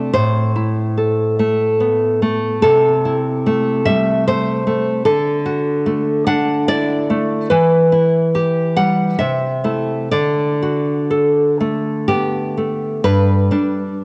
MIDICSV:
0, 0, Header, 1, 2, 480
1, 0, Start_track
1, 0, Tempo, 828729
1, 80, Time_signature, 3, 2, 24, 8
1, 1998, Tempo, 806452
1, 3918, Tempo, 840336
1, 5358, Tempo, 920245
1, 5838, Tempo, 981997
1, 6798, Tempo, 953895
1, 7785, End_track
2, 0, Start_track
2, 0, Title_t, "Nylon-string guitar"
2, 0, Program_c, 0, 24
2, 0, Note_on_c, 0, 48, 57
2, 0, Note_on_c, 0, 57, 48
2, 0, Note_on_c, 0, 60, 49
2, 0, Note_on_c, 0, 62, 42
2, 0, Note_on_c, 0, 74, 79
2, 59, Note_off_c, 0, 48, 0
2, 60, Note_off_c, 0, 74, 0
2, 78, Note_on_c, 0, 72, 79
2, 80, Note_off_c, 0, 57, 0
2, 81, Note_off_c, 0, 60, 0
2, 81, Note_off_c, 0, 62, 0
2, 85, Note_on_c, 0, 45, 62
2, 322, Note_on_c, 0, 64, 48
2, 564, Note_on_c, 0, 69, 46
2, 805, Note_on_c, 0, 57, 49
2, 1037, Note_off_c, 0, 64, 0
2, 1043, Note_on_c, 0, 59, 41
2, 1255, Note_off_c, 0, 72, 0
2, 1278, Note_off_c, 0, 69, 0
2, 1279, Note_off_c, 0, 57, 0
2, 1286, Note_on_c, 0, 57, 50
2, 1502, Note_off_c, 0, 45, 0
2, 1518, Note_on_c, 0, 69, 82
2, 1525, Note_off_c, 0, 59, 0
2, 1525, Note_on_c, 0, 48, 64
2, 1526, Note_off_c, 0, 57, 0
2, 1766, Note_on_c, 0, 64, 49
2, 2006, Note_on_c, 0, 57, 52
2, 2215, Note_off_c, 0, 69, 0
2, 2238, Note_on_c, 0, 76, 91
2, 2244, Note_on_c, 0, 55, 50
2, 2471, Note_off_c, 0, 76, 0
2, 2484, Note_off_c, 0, 64, 0
2, 2487, Note_off_c, 0, 57, 0
2, 2489, Note_on_c, 0, 72, 85
2, 2494, Note_on_c, 0, 57, 45
2, 2716, Note_off_c, 0, 57, 0
2, 2723, Note_on_c, 0, 57, 49
2, 2935, Note_off_c, 0, 48, 0
2, 2942, Note_off_c, 0, 72, 0
2, 2951, Note_on_c, 0, 69, 82
2, 2953, Note_off_c, 0, 57, 0
2, 2955, Note_on_c, 0, 50, 62
2, 2959, Note_off_c, 0, 55, 0
2, 3192, Note_on_c, 0, 66, 51
2, 3433, Note_on_c, 0, 57, 50
2, 3645, Note_off_c, 0, 69, 0
2, 3675, Note_on_c, 0, 78, 91
2, 3678, Note_on_c, 0, 62, 52
2, 3910, Note_off_c, 0, 78, 0
2, 3917, Note_off_c, 0, 66, 0
2, 3921, Note_on_c, 0, 74, 94
2, 3924, Note_on_c, 0, 64, 44
2, 4153, Note_off_c, 0, 57, 0
2, 4160, Note_on_c, 0, 57, 49
2, 4371, Note_off_c, 0, 50, 0
2, 4377, Note_off_c, 0, 74, 0
2, 4389, Note_on_c, 0, 71, 83
2, 4393, Note_off_c, 0, 57, 0
2, 4396, Note_on_c, 0, 52, 64
2, 4397, Note_off_c, 0, 64, 0
2, 4398, Note_off_c, 0, 62, 0
2, 4631, Note_on_c, 0, 64, 48
2, 4874, Note_on_c, 0, 67, 51
2, 5087, Note_off_c, 0, 71, 0
2, 5111, Note_on_c, 0, 78, 86
2, 5114, Note_on_c, 0, 55, 47
2, 5336, Note_off_c, 0, 52, 0
2, 5348, Note_off_c, 0, 78, 0
2, 5350, Note_off_c, 0, 64, 0
2, 5352, Note_on_c, 0, 76, 68
2, 5359, Note_off_c, 0, 55, 0
2, 5359, Note_on_c, 0, 48, 58
2, 5361, Note_off_c, 0, 67, 0
2, 5590, Note_on_c, 0, 57, 44
2, 5592, Note_on_c, 0, 64, 49
2, 5816, Note_off_c, 0, 76, 0
2, 5817, Note_off_c, 0, 57, 0
2, 5818, Note_off_c, 0, 64, 0
2, 5825, Note_off_c, 0, 48, 0
2, 5837, Note_on_c, 0, 74, 76
2, 5840, Note_on_c, 0, 50, 62
2, 6087, Note_on_c, 0, 66, 45
2, 6321, Note_on_c, 0, 69, 47
2, 6566, Note_on_c, 0, 57, 43
2, 6778, Note_off_c, 0, 74, 0
2, 6797, Note_on_c, 0, 67, 77
2, 6800, Note_off_c, 0, 66, 0
2, 6802, Note_on_c, 0, 59, 39
2, 7040, Note_off_c, 0, 57, 0
2, 7043, Note_off_c, 0, 69, 0
2, 7046, Note_on_c, 0, 57, 44
2, 7261, Note_off_c, 0, 50, 0
2, 7261, Note_off_c, 0, 67, 0
2, 7280, Note_on_c, 0, 43, 74
2, 7281, Note_on_c, 0, 71, 96
2, 7282, Note_off_c, 0, 59, 0
2, 7283, Note_off_c, 0, 57, 0
2, 7507, Note_off_c, 0, 43, 0
2, 7517, Note_on_c, 0, 55, 52
2, 7521, Note_on_c, 0, 62, 56
2, 7785, Note_off_c, 0, 55, 0
2, 7785, Note_off_c, 0, 62, 0
2, 7785, Note_off_c, 0, 71, 0
2, 7785, End_track
0, 0, End_of_file